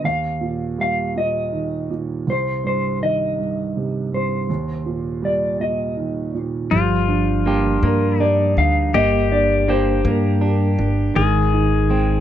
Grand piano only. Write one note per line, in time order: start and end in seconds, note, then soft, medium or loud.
0.04 2.22 D#2 medium
0.41 1.14 A#2 soft
0.78 2.23 G3 soft
1.16 1.89 A#2 soft
1.53 2.24 D#3 soft
1.90 2.26 A#2 soft
2.27 4.45 C2 soft
2.64 3.37 G2 soft
3.01 4.45 D#3 soft
3.39 4.11 G2 soft
3.77 4.48 C3 soft
4.12 4.48 G2 soft
4.49 6.68 D#2 medium
4.86 5.58 A#2 soft
5.22 6.68 G3 soft
5.60 6.33 A#2 soft
5.97 6.70 D#3 soft
6.34 6.71 A#2 soft
6.71 7.45 G3 medium
7.08 7.81 D4 medium
7.46 8.19 G3 medium
7.83 8.55 D4 medium
8.21 8.92 G3 medium
8.57 8.93 D4 medium
8.95 11.12 G3 medium
9.32 10.04 D4 medium
9.68 10.41 G4 medium
10.06 10.77 D4 medium
10.42 11.14 G4 medium
10.78 11.15 D4 medium
11.16 12.20 G#3 medium
11.53 12.20 D#4 medium
11.91 12.20 G5 medium